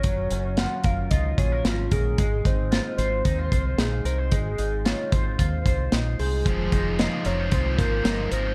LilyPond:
<<
  \new Staff \with { instrumentName = "Soft synth lead" } { \time 4/4 \key aes \major \tempo 4 = 112 des''4 ges''8 f''8 ees''8 des''8 f'8 aes'8~ | aes'8 c''4 c''4. aes'8 c''8 | aes'4 des''8 c''4. r8 aes'8~ | aes'4 ees''8 des''8 c''8 bes'4 c''8 | }
  \new Staff \with { instrumentName = "Clean electric guitar" } { \time 4/4 \key aes \major <ges des' f' bes'>8 des'8 f'8 bes'8 f'8 aes'16 bes'16 des'8 bes'8 | aes8 ees'8 f'8 c''8 ees'16 f'16 c''8 ees'8 bes'16 c''16 | aes8 ees'8 f'8 c''8 f'8 c''8 ees'8 c''8 | f8 ees'8 f'8 bes'16 c''16 f'8 c''8 ees'8 bes'16 c''16 | }
  \new Staff \with { instrumentName = "Overdriven electric guitar" } { \time 4/4 \key aes \major r1 | r1 | r1 | <f aes ees' f' c''>8 <ees' f' c''>8 <f aes ees' f' c''>8 <ees' f' c''>8 <aes ees' f' c''>8 <ees' f' c''>8 <f aes ees' f' c''>8 <ees' f' c''>8 | }
  \new Staff \with { instrumentName = "Fingered electric bass" } { \clef bass \time 4/4 \key aes \major ges,,8 ges,,8. r16 ges,,8 des,8 bes,,8 aes,,8 bes,,8 | aes,,8 aes,,8. r16 aes,,8 ees,8 c,8 bes,,8 c,8 | aes,,8 aes,,8. r16 aes,,8 ees,8 c,8 bes,,8 c,8 | f,,8 f,,8. r16 f,,8 c,8 aes,,8 g,,8 aes,,8 | }
  \new DrumStaff \with { instrumentName = "Drums" } \drummode { \time 4/4 <hh bd>8 hh8 <hh sn>8 <hh bd>8 <hh bd>8 <hh bd>8 <hh sn>8 <hh bd>8 | <hh bd>8 <hh bd>8 <hh sn>8 hh8 <hh bd>8 <hh bd>8 <hh sn>8 hh8 | <hh bd>8 hh8 <hh sn>8 <hh bd>8 <hh bd>8 <hh bd>8 <hh sn>8 hho8 | <hh bd>8 <hh bd>8 <hh sn>8 hh8 <hh bd>8 <hh bd sn>8 <hh sn>8 hh8 | }
>>